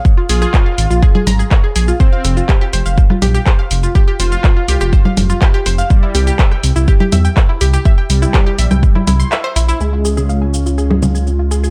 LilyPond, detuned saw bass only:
\new Staff \with { instrumentName = "Detuned saw bass" } { \clef bass \time 4/4 \key f \minor \tempo 4 = 123 r8 bes,,16 r8. aes,,16 bes,,16 r8 aes,,16 r8. bes,,16 r16 | r8 f,,16 r8. f,,16 f,,16 r8 bes,,16 r8. f,,16 r16 | r8 f,,16 r8. c,16 f,,16 r8 f,,16 r8. f,,16 r16 | r8 c,16 r8. c,16 c,16 r8 e,16 r8. c,16 r16 |
r8 c,16 r8. bes,,16 c,16 r8 c,16 r8. bes,,16 r16 | des,1 | }